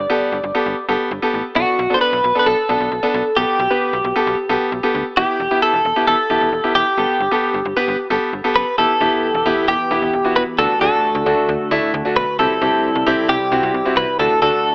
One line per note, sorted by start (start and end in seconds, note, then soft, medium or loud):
0.00 0.84 D5 loud
0.10 0.35 B3 medium
0.10 0.35 G4 medium
0.10 0.35 A4 loud
0.32 0.41 G1 loud
0.43 0.52 G1 loud
0.55 0.73 B3 medium
0.55 0.73 G4 medium
0.55 0.73 A4 medium
0.66 0.75 G1 loud
0.89 0.97 G1 loud
0.89 1.07 B3 medium
0.89 1.07 G4 medium
0.89 1.07 A4 medium
1.11 1.20 G1 loud
1.22 1.41 B3 medium
1.22 1.41 G4 medium
1.22 1.41 A4 medium
1.34 1.42 A1 medium
1.56 1.65 B1 loud
1.56 1.75 B3 medium
1.56 1.75 D4 medium
1.56 1.95 F#4 medium
1.56 1.75 A4 medium
1.79 1.88 B1 loud
1.90 2.15 B3 medium
1.90 2.15 D4 medium
1.90 2.15 A4 medium
1.94 2.01 C5 medium
2.01 2.37 B4 loud
2.13 2.21 B1 loud
2.24 2.33 B1 loud
2.35 2.54 B3 medium
2.35 2.54 D4 medium
2.35 2.54 A4 medium
2.39 2.46 B4 medium
2.46 2.55 B1 loud
2.46 3.39 A4 loud
2.69 2.78 B1 loud
2.69 2.88 B3 medium
2.69 2.88 D4 medium
2.69 2.88 A4 medium
2.80 2.89 B1 medium
2.92 3.00 B1 medium
3.03 3.21 B3 medium
3.03 3.21 D4 medium
3.03 3.21 A4 medium
3.14 3.23 B1 loud
3.36 3.45 B1 loud
3.36 3.55 B3 medium
3.36 4.90 G4 medium
3.36 3.55 G4 medium
3.36 3.55 A4 medium
3.59 3.68 B1 loud
3.70 3.95 B3 medium
3.70 3.95 G4 medium
3.70 3.95 B4 medium
3.93 4.02 B1 medium
4.04 4.13 B1 loud
4.16 4.34 B3 medium
4.16 4.34 G4 medium
4.16 4.34 A4 loud
4.27 4.36 B1 loud
4.49 4.58 B1 medium
4.49 4.68 B3 medium
4.49 4.68 G4 medium
4.49 4.68 A4 loud
4.72 4.81 B1 medium
4.83 5.02 B3 medium
4.83 5.02 G4 medium
4.83 5.02 A4 medium
4.95 5.03 D2 medium
5.17 5.26 E1 loud
5.17 5.36 B3 medium
5.17 5.36 E4 medium
5.17 5.36 G4 medium
5.17 5.59 G4 loud
5.40 5.48 E1 loud
5.51 5.76 B3 medium
5.51 5.76 E4 medium
5.51 5.76 G4 medium
5.62 6.06 A4 loud
5.73 5.82 E1 medium
5.85 5.94 E1 loud
5.96 6.15 B3 medium
5.96 6.15 E4 medium
5.96 6.15 G4 medium
6.07 6.16 E1 loud
6.07 6.75 A4 loud
6.30 6.39 E1 medium
6.30 6.49 B3 medium
6.30 6.49 E4 medium
6.30 6.49 G4 medium
6.41 6.50 E1 medium
6.52 6.61 E1 medium
6.64 6.82 B3 medium
6.64 6.82 E4 medium
6.64 6.82 G4 medium
6.75 6.84 E1 loud
6.75 8.06 G4 medium
6.98 7.06 G1 loud
6.98 7.16 B3 medium
6.98 7.16 G4 medium
6.98 7.16 A4 medium
7.20 7.29 G1 loud
7.31 7.56 B3 medium
7.31 7.56 G4 medium
7.31 7.56 A4 loud
7.54 7.63 G1 medium
7.65 7.74 G1 loud
7.76 7.95 B3 medium
7.76 7.95 G4 medium
7.76 7.95 B4 loud
7.88 7.97 G1 loud
8.10 8.19 G1 loud
8.10 8.29 B3 medium
8.10 8.29 G4 medium
8.10 8.29 A4 loud
8.33 8.42 G1 medium
8.44 8.63 B3 medium
8.44 8.63 G4 medium
8.44 8.63 A4 medium
8.55 8.64 F#1 medium
8.55 8.78 B4 medium
8.78 8.87 E1 loud
8.78 10.57 E3 medium
8.78 8.90 B3 medium
8.78 10.57 B3 medium
8.78 8.90 E4 medium
8.78 8.90 G4 medium
8.78 10.57 G4 medium
8.78 9.68 A4 medium
9.00 9.09 E1 loud
9.00 9.25 B3 medium
9.00 9.25 E4 medium
9.00 9.25 G4 medium
9.34 9.43 E1 loud
9.46 9.54 E1 loud
9.46 9.71 B3 medium
9.46 9.71 E4 medium
9.46 9.71 G4 medium
9.68 9.77 E1 loud
9.68 10.36 G4 medium
9.91 10.00 E1 loud
9.91 10.09 B3 medium
9.91 10.09 E4 medium
9.91 10.09 G4 medium
10.02 10.11 E1 medium
10.13 10.22 E1 medium
10.25 10.43 B3 medium
10.25 10.43 E4 medium
10.25 10.43 F#4 medium
10.36 10.45 E1 loud
10.36 10.42 B4 medium
10.58 10.67 D2 loud
10.58 12.37 D3 medium
10.58 10.71 A3 medium
10.58 12.37 A3 medium
10.58 10.71 D4 medium
10.58 10.71 F#4 medium
10.58 12.37 F#4 medium
10.58 10.79 A4 medium
10.81 10.90 D2 loud
10.81 11.06 A3 medium
10.81 11.06 D4 medium
10.81 11.06 F#4 medium
10.81 12.16 A4 medium
11.15 11.24 D2 loud
11.26 11.35 D2 loud
11.26 11.51 A3 medium
11.26 11.51 D4 medium
11.26 11.51 F#4 medium
11.49 11.57 D2 loud
11.71 11.80 D2 medium
11.71 11.90 A3 medium
11.71 11.90 D4 medium
11.71 11.90 E4 loud
11.94 12.03 D2 loud
12.05 12.24 A3 medium
12.05 12.24 D4 medium
12.05 12.24 F#4 medium
12.16 12.25 B1 medium
12.16 12.39 B4 medium
12.39 12.48 C2 loud
12.39 14.18 C3 medium
12.39 14.18 G3 medium
12.39 12.51 C4 medium
12.39 14.18 E4 medium
12.39 12.51 E4 medium
12.39 12.51 G4 medium
12.39 13.29 A4 medium
12.61 12.70 C2 loud
12.61 12.86 C4 medium
12.61 12.86 E4 medium
12.61 12.86 G4 medium
12.95 13.04 C2 loud
13.06 13.15 C2 loud
13.06 13.31 C4 medium
13.06 13.31 E4 medium
13.06 13.31 G4 loud
13.29 13.38 C2 loud
13.29 13.96 G4 medium
13.52 13.60 C2 loud
13.52 13.70 C4 medium
13.52 13.70 E4 medium
13.52 13.70 F#4 medium
13.63 13.72 C2 loud
13.74 13.83 C2 medium
13.85 14.04 C4 medium
13.85 14.04 E4 medium
13.85 14.04 F#4 medium
13.97 14.06 C2 loud
13.97 14.19 B4 medium
14.19 14.28 D2 loud
14.19 14.75 D3 medium
14.19 14.32 A3 medium
14.19 14.75 A3 medium
14.19 14.32 D4 medium
14.19 14.32 F#4 medium
14.19 14.75 F#4 medium
14.19 14.41 A4 medium
14.42 14.51 D2 loud
14.42 14.67 A3 medium
14.42 14.67 D4 medium
14.42 14.67 F#4 medium
14.42 14.75 A4 medium